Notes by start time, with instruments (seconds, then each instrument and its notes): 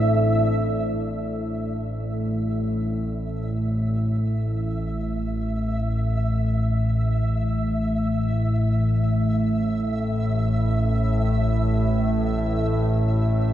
Already playing: synth drone A1 A2, ambient pad E4 A4 C5 D5, synth texture E5
0.94 synth drone A1 A2, synth texture E5